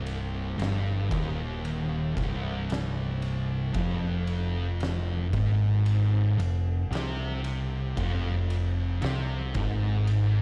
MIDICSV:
0, 0, Header, 1, 4, 480
1, 0, Start_track
1, 0, Tempo, 1054482
1, 1706, Time_signature, 4, 2, 24, 8
1, 4743, End_track
2, 0, Start_track
2, 0, Title_t, "Distorted electric guitar"
2, 0, Program_c, 0, 30
2, 0, Note_on_c, 0, 36, 109
2, 259, Note_off_c, 0, 36, 0
2, 267, Note_on_c, 0, 43, 101
2, 499, Note_off_c, 0, 43, 0
2, 503, Note_on_c, 0, 39, 106
2, 977, Note_off_c, 0, 39, 0
2, 979, Note_on_c, 0, 36, 102
2, 1695, Note_off_c, 0, 36, 0
2, 1705, Note_on_c, 0, 41, 114
2, 2419, Note_off_c, 0, 41, 0
2, 2429, Note_on_c, 0, 44, 105
2, 2901, Note_off_c, 0, 44, 0
2, 2908, Note_on_c, 0, 41, 71
2, 3100, Note_off_c, 0, 41, 0
2, 3147, Note_on_c, 0, 48, 100
2, 3620, Note_off_c, 0, 48, 0
2, 3628, Note_on_c, 0, 41, 113
2, 4101, Note_off_c, 0, 41, 0
2, 4106, Note_on_c, 0, 48, 102
2, 4339, Note_off_c, 0, 48, 0
2, 4349, Note_on_c, 0, 44, 100
2, 4743, Note_off_c, 0, 44, 0
2, 4743, End_track
3, 0, Start_track
3, 0, Title_t, "Picked electric bass"
3, 0, Program_c, 1, 34
3, 0, Note_on_c, 1, 24, 91
3, 249, Note_off_c, 1, 24, 0
3, 265, Note_on_c, 1, 31, 92
3, 489, Note_off_c, 1, 31, 0
3, 505, Note_on_c, 1, 27, 95
3, 967, Note_off_c, 1, 27, 0
3, 989, Note_on_c, 1, 24, 111
3, 1689, Note_off_c, 1, 24, 0
3, 1705, Note_on_c, 1, 29, 99
3, 2408, Note_off_c, 1, 29, 0
3, 2427, Note_on_c, 1, 32, 94
3, 2889, Note_off_c, 1, 32, 0
3, 2903, Note_on_c, 1, 29, 86
3, 3128, Note_off_c, 1, 29, 0
3, 3143, Note_on_c, 1, 36, 99
3, 3607, Note_off_c, 1, 36, 0
3, 3628, Note_on_c, 1, 29, 98
3, 4090, Note_off_c, 1, 29, 0
3, 4110, Note_on_c, 1, 36, 87
3, 4332, Note_off_c, 1, 36, 0
3, 4348, Note_on_c, 1, 32, 97
3, 4743, Note_off_c, 1, 32, 0
3, 4743, End_track
4, 0, Start_track
4, 0, Title_t, "Drums"
4, 29, Note_on_c, 9, 51, 73
4, 75, Note_off_c, 9, 51, 0
4, 270, Note_on_c, 9, 51, 96
4, 283, Note_on_c, 9, 38, 103
4, 316, Note_off_c, 9, 51, 0
4, 328, Note_off_c, 9, 38, 0
4, 506, Note_on_c, 9, 36, 121
4, 508, Note_on_c, 9, 51, 81
4, 552, Note_off_c, 9, 36, 0
4, 554, Note_off_c, 9, 51, 0
4, 750, Note_on_c, 9, 51, 91
4, 795, Note_off_c, 9, 51, 0
4, 987, Note_on_c, 9, 36, 103
4, 991, Note_on_c, 9, 51, 71
4, 1004, Note_on_c, 9, 38, 35
4, 1033, Note_off_c, 9, 36, 0
4, 1037, Note_off_c, 9, 51, 0
4, 1049, Note_off_c, 9, 38, 0
4, 1227, Note_on_c, 9, 51, 96
4, 1240, Note_on_c, 9, 38, 112
4, 1273, Note_off_c, 9, 51, 0
4, 1285, Note_off_c, 9, 38, 0
4, 1467, Note_on_c, 9, 51, 70
4, 1512, Note_off_c, 9, 51, 0
4, 1703, Note_on_c, 9, 51, 98
4, 1706, Note_on_c, 9, 36, 108
4, 1749, Note_off_c, 9, 51, 0
4, 1751, Note_off_c, 9, 36, 0
4, 1945, Note_on_c, 9, 51, 73
4, 1990, Note_off_c, 9, 51, 0
4, 2186, Note_on_c, 9, 51, 91
4, 2199, Note_on_c, 9, 38, 110
4, 2232, Note_off_c, 9, 51, 0
4, 2244, Note_off_c, 9, 38, 0
4, 2427, Note_on_c, 9, 36, 116
4, 2427, Note_on_c, 9, 51, 87
4, 2473, Note_off_c, 9, 36, 0
4, 2473, Note_off_c, 9, 51, 0
4, 2667, Note_on_c, 9, 51, 98
4, 2712, Note_off_c, 9, 51, 0
4, 2912, Note_on_c, 9, 51, 79
4, 2957, Note_off_c, 9, 51, 0
4, 3153, Note_on_c, 9, 51, 108
4, 3165, Note_on_c, 9, 38, 126
4, 3198, Note_off_c, 9, 51, 0
4, 3211, Note_off_c, 9, 38, 0
4, 3388, Note_on_c, 9, 51, 80
4, 3433, Note_off_c, 9, 51, 0
4, 3629, Note_on_c, 9, 36, 111
4, 3629, Note_on_c, 9, 51, 114
4, 3675, Note_off_c, 9, 36, 0
4, 3675, Note_off_c, 9, 51, 0
4, 3870, Note_on_c, 9, 51, 72
4, 3915, Note_off_c, 9, 51, 0
4, 4105, Note_on_c, 9, 51, 105
4, 4117, Note_on_c, 9, 38, 102
4, 4151, Note_off_c, 9, 51, 0
4, 4163, Note_off_c, 9, 38, 0
4, 4344, Note_on_c, 9, 51, 79
4, 4348, Note_on_c, 9, 36, 118
4, 4390, Note_off_c, 9, 51, 0
4, 4393, Note_off_c, 9, 36, 0
4, 4585, Note_on_c, 9, 51, 97
4, 4631, Note_off_c, 9, 51, 0
4, 4743, End_track
0, 0, End_of_file